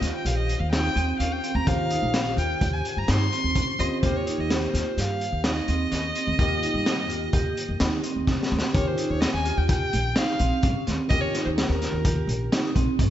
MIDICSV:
0, 0, Header, 1, 6, 480
1, 0, Start_track
1, 0, Tempo, 472069
1, 1696, Time_signature, 5, 2, 24, 8
1, 13320, End_track
2, 0, Start_track
2, 0, Title_t, "Violin"
2, 0, Program_c, 0, 40
2, 0, Note_on_c, 0, 75, 67
2, 137, Note_off_c, 0, 75, 0
2, 149, Note_on_c, 0, 79, 70
2, 262, Note_on_c, 0, 77, 74
2, 278, Note_off_c, 0, 79, 0
2, 371, Note_off_c, 0, 77, 0
2, 377, Note_on_c, 0, 75, 66
2, 603, Note_on_c, 0, 77, 66
2, 618, Note_off_c, 0, 75, 0
2, 716, Note_off_c, 0, 77, 0
2, 723, Note_on_c, 0, 79, 100
2, 1175, Note_off_c, 0, 79, 0
2, 1211, Note_on_c, 0, 77, 80
2, 1342, Note_on_c, 0, 79, 81
2, 1358, Note_off_c, 0, 77, 0
2, 1578, Note_on_c, 0, 82, 86
2, 1593, Note_off_c, 0, 79, 0
2, 1698, Note_on_c, 0, 77, 102
2, 1713, Note_off_c, 0, 82, 0
2, 2418, Note_off_c, 0, 77, 0
2, 2424, Note_on_c, 0, 79, 84
2, 2778, Note_on_c, 0, 80, 77
2, 2794, Note_off_c, 0, 79, 0
2, 3033, Note_on_c, 0, 82, 88
2, 3048, Note_off_c, 0, 80, 0
2, 3151, Note_on_c, 0, 84, 112
2, 3166, Note_off_c, 0, 82, 0
2, 3859, Note_on_c, 0, 75, 84
2, 3875, Note_off_c, 0, 84, 0
2, 4085, Note_off_c, 0, 75, 0
2, 4091, Note_on_c, 0, 72, 92
2, 4233, Note_on_c, 0, 73, 74
2, 4248, Note_off_c, 0, 72, 0
2, 4474, Note_on_c, 0, 75, 76
2, 4489, Note_off_c, 0, 73, 0
2, 4601, Note_on_c, 0, 72, 72
2, 4616, Note_off_c, 0, 75, 0
2, 5074, Note_on_c, 0, 77, 81
2, 5090, Note_off_c, 0, 72, 0
2, 5543, Note_off_c, 0, 77, 0
2, 5550, Note_on_c, 0, 75, 97
2, 8382, Note_off_c, 0, 75, 0
2, 8886, Note_on_c, 0, 73, 90
2, 9015, Note_on_c, 0, 72, 75
2, 9030, Note_off_c, 0, 73, 0
2, 9254, Note_on_c, 0, 73, 76
2, 9269, Note_off_c, 0, 72, 0
2, 9358, Note_on_c, 0, 75, 81
2, 9373, Note_off_c, 0, 73, 0
2, 9487, Note_off_c, 0, 75, 0
2, 9495, Note_on_c, 0, 80, 84
2, 9733, Note_on_c, 0, 79, 78
2, 9749, Note_off_c, 0, 80, 0
2, 9843, Note_off_c, 0, 79, 0
2, 9849, Note_on_c, 0, 79, 91
2, 10345, Note_on_c, 0, 77, 86
2, 10360, Note_off_c, 0, 79, 0
2, 11058, Note_off_c, 0, 77, 0
2, 11279, Note_on_c, 0, 75, 112
2, 11395, Note_on_c, 0, 73, 97
2, 11410, Note_off_c, 0, 75, 0
2, 11633, Note_off_c, 0, 73, 0
2, 11639, Note_on_c, 0, 72, 73
2, 11696, Note_off_c, 0, 72, 0
2, 11760, Note_on_c, 0, 70, 72
2, 12683, Note_off_c, 0, 70, 0
2, 13320, End_track
3, 0, Start_track
3, 0, Title_t, "Vibraphone"
3, 0, Program_c, 1, 11
3, 12, Note_on_c, 1, 65, 60
3, 133, Note_off_c, 1, 65, 0
3, 256, Note_on_c, 1, 67, 70
3, 497, Note_off_c, 1, 67, 0
3, 734, Note_on_c, 1, 63, 65
3, 855, Note_off_c, 1, 63, 0
3, 974, Note_on_c, 1, 60, 71
3, 1096, Note_off_c, 1, 60, 0
3, 1223, Note_on_c, 1, 61, 67
3, 1342, Note_off_c, 1, 61, 0
3, 1462, Note_on_c, 1, 60, 65
3, 1582, Note_off_c, 1, 60, 0
3, 1702, Note_on_c, 1, 65, 76
3, 1821, Note_off_c, 1, 65, 0
3, 1942, Note_on_c, 1, 63, 62
3, 2182, Note_off_c, 1, 63, 0
3, 2424, Note_on_c, 1, 65, 65
3, 2543, Note_off_c, 1, 65, 0
3, 2653, Note_on_c, 1, 67, 76
3, 2896, Note_off_c, 1, 67, 0
3, 3132, Note_on_c, 1, 63, 63
3, 3254, Note_off_c, 1, 63, 0
3, 3380, Note_on_c, 1, 60, 71
3, 3501, Note_off_c, 1, 60, 0
3, 3616, Note_on_c, 1, 61, 69
3, 3738, Note_off_c, 1, 61, 0
3, 3862, Note_on_c, 1, 60, 67
3, 3982, Note_off_c, 1, 60, 0
3, 4101, Note_on_c, 1, 65, 82
3, 4222, Note_off_c, 1, 65, 0
3, 4335, Note_on_c, 1, 63, 68
3, 4578, Note_off_c, 1, 63, 0
3, 4816, Note_on_c, 1, 65, 70
3, 4937, Note_off_c, 1, 65, 0
3, 5059, Note_on_c, 1, 67, 73
3, 5301, Note_off_c, 1, 67, 0
3, 5535, Note_on_c, 1, 63, 62
3, 5657, Note_off_c, 1, 63, 0
3, 5779, Note_on_c, 1, 60, 72
3, 5900, Note_off_c, 1, 60, 0
3, 6012, Note_on_c, 1, 61, 60
3, 6135, Note_off_c, 1, 61, 0
3, 6257, Note_on_c, 1, 60, 62
3, 6378, Note_off_c, 1, 60, 0
3, 6495, Note_on_c, 1, 65, 72
3, 6617, Note_off_c, 1, 65, 0
3, 6739, Note_on_c, 1, 63, 67
3, 6981, Note_off_c, 1, 63, 0
3, 7214, Note_on_c, 1, 65, 68
3, 7336, Note_off_c, 1, 65, 0
3, 7459, Note_on_c, 1, 67, 72
3, 7700, Note_off_c, 1, 67, 0
3, 7935, Note_on_c, 1, 63, 64
3, 8056, Note_off_c, 1, 63, 0
3, 8181, Note_on_c, 1, 60, 68
3, 8301, Note_off_c, 1, 60, 0
3, 8419, Note_on_c, 1, 61, 64
3, 8539, Note_off_c, 1, 61, 0
3, 8654, Note_on_c, 1, 60, 62
3, 8775, Note_off_c, 1, 60, 0
3, 8897, Note_on_c, 1, 65, 78
3, 9017, Note_off_c, 1, 65, 0
3, 9135, Note_on_c, 1, 63, 66
3, 9377, Note_off_c, 1, 63, 0
3, 9613, Note_on_c, 1, 65, 74
3, 9734, Note_off_c, 1, 65, 0
3, 9855, Note_on_c, 1, 67, 75
3, 10096, Note_off_c, 1, 67, 0
3, 10333, Note_on_c, 1, 63, 71
3, 10454, Note_off_c, 1, 63, 0
3, 10578, Note_on_c, 1, 60, 69
3, 10697, Note_off_c, 1, 60, 0
3, 10812, Note_on_c, 1, 61, 64
3, 10933, Note_off_c, 1, 61, 0
3, 11056, Note_on_c, 1, 60, 72
3, 11176, Note_off_c, 1, 60, 0
3, 11303, Note_on_c, 1, 65, 75
3, 11421, Note_off_c, 1, 65, 0
3, 11537, Note_on_c, 1, 63, 64
3, 11776, Note_off_c, 1, 63, 0
3, 12018, Note_on_c, 1, 65, 69
3, 12137, Note_off_c, 1, 65, 0
3, 12261, Note_on_c, 1, 67, 69
3, 12499, Note_off_c, 1, 67, 0
3, 12733, Note_on_c, 1, 63, 72
3, 12852, Note_off_c, 1, 63, 0
3, 12969, Note_on_c, 1, 60, 76
3, 13090, Note_off_c, 1, 60, 0
3, 13210, Note_on_c, 1, 61, 63
3, 13320, Note_off_c, 1, 61, 0
3, 13320, End_track
4, 0, Start_track
4, 0, Title_t, "Tine electric piano"
4, 0, Program_c, 2, 4
4, 0, Note_on_c, 2, 51, 50
4, 0, Note_on_c, 2, 61, 46
4, 0, Note_on_c, 2, 65, 51
4, 0, Note_on_c, 2, 67, 45
4, 0, Note_on_c, 2, 72, 57
4, 1642, Note_off_c, 2, 51, 0
4, 1646, Note_off_c, 2, 61, 0
4, 1652, Note_off_c, 2, 65, 0
4, 1655, Note_off_c, 2, 67, 0
4, 1662, Note_off_c, 2, 72, 0
4, 1672, Note_on_c, 2, 51, 53
4, 1686, Note_on_c, 2, 61, 46
4, 1692, Note_on_c, 2, 65, 48
4, 1703, Note_on_c, 2, 67, 47
4, 1712, Note_on_c, 2, 72, 58
4, 3806, Note_off_c, 2, 51, 0
4, 3813, Note_off_c, 2, 61, 0
4, 3816, Note_off_c, 2, 65, 0
4, 3822, Note_off_c, 2, 67, 0
4, 3826, Note_off_c, 2, 72, 0
4, 3847, Note_on_c, 2, 51, 43
4, 3850, Note_on_c, 2, 61, 40
4, 3856, Note_on_c, 2, 65, 41
4, 3861, Note_on_c, 2, 67, 43
4, 3864, Note_on_c, 2, 72, 49
4, 4076, Note_off_c, 2, 51, 0
4, 4089, Note_on_c, 2, 51, 48
4, 4095, Note_off_c, 2, 61, 0
4, 4098, Note_off_c, 2, 65, 0
4, 4100, Note_off_c, 2, 67, 0
4, 4102, Note_off_c, 2, 72, 0
4, 4104, Note_on_c, 2, 58, 46
4, 4126, Note_on_c, 2, 67, 59
4, 6454, Note_off_c, 2, 51, 0
4, 6461, Note_off_c, 2, 58, 0
4, 6472, Note_off_c, 2, 67, 0
4, 6480, Note_on_c, 2, 51, 61
4, 6495, Note_on_c, 2, 58, 55
4, 6516, Note_on_c, 2, 67, 70
4, 8846, Note_off_c, 2, 51, 0
4, 8854, Note_off_c, 2, 58, 0
4, 8865, Note_off_c, 2, 67, 0
4, 8874, Note_on_c, 2, 51, 58
4, 8892, Note_on_c, 2, 61, 50
4, 8908, Note_on_c, 2, 67, 62
4, 11240, Note_off_c, 2, 51, 0
4, 11249, Note_off_c, 2, 61, 0
4, 11257, Note_off_c, 2, 67, 0
4, 11266, Note_on_c, 2, 51, 55
4, 11287, Note_on_c, 2, 61, 49
4, 11302, Note_on_c, 2, 67, 61
4, 13320, Note_off_c, 2, 51, 0
4, 13320, Note_off_c, 2, 61, 0
4, 13320, Note_off_c, 2, 67, 0
4, 13320, End_track
5, 0, Start_track
5, 0, Title_t, "Upright bass"
5, 0, Program_c, 3, 32
5, 12, Note_on_c, 3, 39, 77
5, 107, Note_off_c, 3, 39, 0
5, 253, Note_on_c, 3, 34, 76
5, 536, Note_off_c, 3, 34, 0
5, 610, Note_on_c, 3, 39, 81
5, 895, Note_off_c, 3, 39, 0
5, 974, Note_on_c, 3, 39, 78
5, 1163, Note_off_c, 3, 39, 0
5, 1215, Note_on_c, 3, 39, 74
5, 1404, Note_off_c, 3, 39, 0
5, 1571, Note_on_c, 3, 39, 78
5, 1667, Note_off_c, 3, 39, 0
5, 1700, Note_on_c, 3, 39, 89
5, 1982, Note_off_c, 3, 39, 0
5, 2057, Note_on_c, 3, 34, 71
5, 2408, Note_on_c, 3, 39, 84
5, 2423, Note_off_c, 3, 34, 0
5, 2601, Note_off_c, 3, 39, 0
5, 2658, Note_on_c, 3, 39, 76
5, 2847, Note_off_c, 3, 39, 0
5, 3017, Note_on_c, 3, 43, 69
5, 3112, Note_off_c, 3, 43, 0
5, 3138, Note_on_c, 3, 43, 90
5, 3327, Note_off_c, 3, 43, 0
5, 3496, Note_on_c, 3, 39, 78
5, 3686, Note_off_c, 3, 39, 0
5, 3854, Note_on_c, 3, 39, 96
5, 3950, Note_off_c, 3, 39, 0
5, 4098, Note_on_c, 3, 39, 80
5, 4381, Note_off_c, 3, 39, 0
5, 4455, Note_on_c, 3, 39, 62
5, 4740, Note_off_c, 3, 39, 0
5, 4815, Note_on_c, 3, 39, 86
5, 4911, Note_off_c, 3, 39, 0
5, 5055, Note_on_c, 3, 43, 76
5, 5340, Note_off_c, 3, 43, 0
5, 5412, Note_on_c, 3, 39, 80
5, 5698, Note_off_c, 3, 39, 0
5, 5777, Note_on_c, 3, 39, 74
5, 5966, Note_off_c, 3, 39, 0
5, 6015, Note_on_c, 3, 39, 72
5, 6206, Note_off_c, 3, 39, 0
5, 6379, Note_on_c, 3, 39, 85
5, 6473, Note_off_c, 3, 39, 0
5, 6496, Note_on_c, 3, 39, 90
5, 6780, Note_off_c, 3, 39, 0
5, 6853, Note_on_c, 3, 43, 71
5, 7219, Note_off_c, 3, 43, 0
5, 7219, Note_on_c, 3, 39, 82
5, 7407, Note_off_c, 3, 39, 0
5, 7455, Note_on_c, 3, 39, 68
5, 7645, Note_off_c, 3, 39, 0
5, 7815, Note_on_c, 3, 41, 71
5, 7911, Note_off_c, 3, 41, 0
5, 7936, Note_on_c, 3, 39, 97
5, 8125, Note_off_c, 3, 39, 0
5, 8295, Note_on_c, 3, 39, 72
5, 8484, Note_off_c, 3, 39, 0
5, 8657, Note_on_c, 3, 39, 89
5, 8751, Note_off_c, 3, 39, 0
5, 8893, Note_on_c, 3, 39, 85
5, 9083, Note_off_c, 3, 39, 0
5, 9254, Note_on_c, 3, 39, 76
5, 9443, Note_off_c, 3, 39, 0
5, 9495, Note_on_c, 3, 39, 77
5, 9684, Note_off_c, 3, 39, 0
5, 9734, Note_on_c, 3, 39, 74
5, 10017, Note_off_c, 3, 39, 0
5, 10098, Note_on_c, 3, 34, 81
5, 10285, Note_off_c, 3, 34, 0
5, 10573, Note_on_c, 3, 34, 92
5, 10668, Note_off_c, 3, 34, 0
5, 10810, Note_on_c, 3, 43, 76
5, 10905, Note_off_c, 3, 43, 0
5, 11059, Note_on_c, 3, 39, 77
5, 11150, Note_off_c, 3, 39, 0
5, 11289, Note_on_c, 3, 39, 91
5, 11479, Note_off_c, 3, 39, 0
5, 11648, Note_on_c, 3, 39, 74
5, 11838, Note_off_c, 3, 39, 0
5, 11889, Note_on_c, 3, 39, 74
5, 12078, Note_off_c, 3, 39, 0
5, 12125, Note_on_c, 3, 39, 79
5, 12410, Note_off_c, 3, 39, 0
5, 12479, Note_on_c, 3, 34, 80
5, 12671, Note_off_c, 3, 34, 0
5, 12973, Note_on_c, 3, 34, 87
5, 13065, Note_off_c, 3, 34, 0
5, 13209, Note_on_c, 3, 43, 76
5, 13303, Note_off_c, 3, 43, 0
5, 13320, End_track
6, 0, Start_track
6, 0, Title_t, "Drums"
6, 23, Note_on_c, 9, 38, 29
6, 23, Note_on_c, 9, 42, 61
6, 124, Note_off_c, 9, 38, 0
6, 124, Note_off_c, 9, 42, 0
6, 261, Note_on_c, 9, 42, 74
6, 363, Note_off_c, 9, 42, 0
6, 499, Note_on_c, 9, 42, 52
6, 600, Note_off_c, 9, 42, 0
6, 740, Note_on_c, 9, 38, 99
6, 740, Note_on_c, 9, 42, 73
6, 841, Note_off_c, 9, 38, 0
6, 841, Note_off_c, 9, 42, 0
6, 982, Note_on_c, 9, 42, 52
6, 1083, Note_off_c, 9, 42, 0
6, 1221, Note_on_c, 9, 42, 66
6, 1322, Note_off_c, 9, 42, 0
6, 1461, Note_on_c, 9, 42, 47
6, 1563, Note_off_c, 9, 42, 0
6, 1698, Note_on_c, 9, 36, 93
6, 1699, Note_on_c, 9, 42, 63
6, 1800, Note_off_c, 9, 36, 0
6, 1801, Note_off_c, 9, 42, 0
6, 1936, Note_on_c, 9, 42, 55
6, 2038, Note_off_c, 9, 42, 0
6, 2174, Note_on_c, 9, 38, 96
6, 2174, Note_on_c, 9, 42, 70
6, 2276, Note_off_c, 9, 38, 0
6, 2276, Note_off_c, 9, 42, 0
6, 2419, Note_on_c, 9, 42, 54
6, 2521, Note_off_c, 9, 42, 0
6, 2657, Note_on_c, 9, 36, 96
6, 2658, Note_on_c, 9, 42, 79
6, 2759, Note_off_c, 9, 36, 0
6, 2759, Note_off_c, 9, 42, 0
6, 2898, Note_on_c, 9, 42, 50
6, 3000, Note_off_c, 9, 42, 0
6, 3134, Note_on_c, 9, 38, 100
6, 3134, Note_on_c, 9, 42, 81
6, 3236, Note_off_c, 9, 38, 0
6, 3236, Note_off_c, 9, 42, 0
6, 3380, Note_on_c, 9, 42, 50
6, 3481, Note_off_c, 9, 42, 0
6, 3612, Note_on_c, 9, 42, 74
6, 3615, Note_on_c, 9, 36, 81
6, 3714, Note_off_c, 9, 42, 0
6, 3717, Note_off_c, 9, 36, 0
6, 3856, Note_on_c, 9, 42, 56
6, 3957, Note_off_c, 9, 42, 0
6, 4097, Note_on_c, 9, 36, 96
6, 4098, Note_on_c, 9, 42, 71
6, 4199, Note_off_c, 9, 36, 0
6, 4200, Note_off_c, 9, 42, 0
6, 4342, Note_on_c, 9, 42, 58
6, 4444, Note_off_c, 9, 42, 0
6, 4581, Note_on_c, 9, 38, 93
6, 4581, Note_on_c, 9, 42, 70
6, 4682, Note_off_c, 9, 38, 0
6, 4682, Note_off_c, 9, 42, 0
6, 4825, Note_on_c, 9, 38, 28
6, 4825, Note_on_c, 9, 42, 60
6, 4927, Note_off_c, 9, 38, 0
6, 4927, Note_off_c, 9, 42, 0
6, 5062, Note_on_c, 9, 38, 29
6, 5062, Note_on_c, 9, 42, 77
6, 5164, Note_off_c, 9, 38, 0
6, 5164, Note_off_c, 9, 42, 0
6, 5298, Note_on_c, 9, 42, 48
6, 5400, Note_off_c, 9, 42, 0
6, 5531, Note_on_c, 9, 38, 99
6, 5531, Note_on_c, 9, 42, 78
6, 5632, Note_off_c, 9, 38, 0
6, 5632, Note_off_c, 9, 42, 0
6, 5774, Note_on_c, 9, 42, 50
6, 5876, Note_off_c, 9, 42, 0
6, 6017, Note_on_c, 9, 38, 27
6, 6017, Note_on_c, 9, 42, 66
6, 6118, Note_off_c, 9, 38, 0
6, 6118, Note_off_c, 9, 42, 0
6, 6256, Note_on_c, 9, 42, 54
6, 6357, Note_off_c, 9, 42, 0
6, 6497, Note_on_c, 9, 36, 88
6, 6497, Note_on_c, 9, 42, 71
6, 6598, Note_off_c, 9, 42, 0
6, 6599, Note_off_c, 9, 36, 0
6, 6740, Note_on_c, 9, 42, 52
6, 6842, Note_off_c, 9, 42, 0
6, 6979, Note_on_c, 9, 38, 95
6, 6979, Note_on_c, 9, 42, 79
6, 7080, Note_off_c, 9, 38, 0
6, 7080, Note_off_c, 9, 42, 0
6, 7216, Note_on_c, 9, 42, 58
6, 7318, Note_off_c, 9, 42, 0
6, 7452, Note_on_c, 9, 42, 72
6, 7456, Note_on_c, 9, 36, 96
6, 7554, Note_off_c, 9, 42, 0
6, 7558, Note_off_c, 9, 36, 0
6, 7699, Note_on_c, 9, 42, 61
6, 7800, Note_off_c, 9, 42, 0
6, 7932, Note_on_c, 9, 38, 101
6, 7932, Note_on_c, 9, 42, 81
6, 8033, Note_off_c, 9, 38, 0
6, 8033, Note_off_c, 9, 42, 0
6, 8171, Note_on_c, 9, 42, 60
6, 8272, Note_off_c, 9, 42, 0
6, 8411, Note_on_c, 9, 38, 47
6, 8414, Note_on_c, 9, 36, 81
6, 8512, Note_off_c, 9, 38, 0
6, 8516, Note_off_c, 9, 36, 0
6, 8570, Note_on_c, 9, 38, 55
6, 8671, Note_off_c, 9, 38, 0
6, 8730, Note_on_c, 9, 38, 80
6, 8832, Note_off_c, 9, 38, 0
6, 8890, Note_on_c, 9, 42, 67
6, 8892, Note_on_c, 9, 36, 100
6, 8992, Note_off_c, 9, 42, 0
6, 8994, Note_off_c, 9, 36, 0
6, 9127, Note_on_c, 9, 42, 59
6, 9228, Note_off_c, 9, 42, 0
6, 9373, Note_on_c, 9, 38, 96
6, 9373, Note_on_c, 9, 42, 68
6, 9474, Note_off_c, 9, 38, 0
6, 9474, Note_off_c, 9, 42, 0
6, 9612, Note_on_c, 9, 42, 49
6, 9714, Note_off_c, 9, 42, 0
6, 9853, Note_on_c, 9, 42, 73
6, 9854, Note_on_c, 9, 36, 107
6, 9955, Note_off_c, 9, 42, 0
6, 9956, Note_off_c, 9, 36, 0
6, 10097, Note_on_c, 9, 42, 53
6, 10198, Note_off_c, 9, 42, 0
6, 10328, Note_on_c, 9, 38, 109
6, 10328, Note_on_c, 9, 42, 74
6, 10430, Note_off_c, 9, 38, 0
6, 10430, Note_off_c, 9, 42, 0
6, 10567, Note_on_c, 9, 42, 52
6, 10669, Note_off_c, 9, 42, 0
6, 10806, Note_on_c, 9, 42, 71
6, 10811, Note_on_c, 9, 36, 92
6, 10907, Note_off_c, 9, 42, 0
6, 10913, Note_off_c, 9, 36, 0
6, 11053, Note_on_c, 9, 38, 31
6, 11053, Note_on_c, 9, 42, 59
6, 11155, Note_off_c, 9, 38, 0
6, 11155, Note_off_c, 9, 42, 0
6, 11288, Note_on_c, 9, 42, 75
6, 11292, Note_on_c, 9, 36, 98
6, 11390, Note_off_c, 9, 42, 0
6, 11394, Note_off_c, 9, 36, 0
6, 11536, Note_on_c, 9, 38, 31
6, 11536, Note_on_c, 9, 42, 60
6, 11638, Note_off_c, 9, 38, 0
6, 11638, Note_off_c, 9, 42, 0
6, 11774, Note_on_c, 9, 38, 90
6, 11774, Note_on_c, 9, 42, 75
6, 11876, Note_off_c, 9, 38, 0
6, 11876, Note_off_c, 9, 42, 0
6, 12016, Note_on_c, 9, 38, 32
6, 12016, Note_on_c, 9, 42, 56
6, 12118, Note_off_c, 9, 38, 0
6, 12118, Note_off_c, 9, 42, 0
6, 12250, Note_on_c, 9, 42, 84
6, 12251, Note_on_c, 9, 36, 103
6, 12352, Note_off_c, 9, 42, 0
6, 12353, Note_off_c, 9, 36, 0
6, 12495, Note_on_c, 9, 42, 56
6, 12596, Note_off_c, 9, 42, 0
6, 12735, Note_on_c, 9, 38, 107
6, 12735, Note_on_c, 9, 42, 77
6, 12836, Note_off_c, 9, 38, 0
6, 12836, Note_off_c, 9, 42, 0
6, 12972, Note_on_c, 9, 36, 67
6, 12973, Note_on_c, 9, 42, 49
6, 13073, Note_off_c, 9, 36, 0
6, 13075, Note_off_c, 9, 42, 0
6, 13210, Note_on_c, 9, 36, 81
6, 13211, Note_on_c, 9, 42, 68
6, 13312, Note_off_c, 9, 36, 0
6, 13313, Note_off_c, 9, 42, 0
6, 13320, End_track
0, 0, End_of_file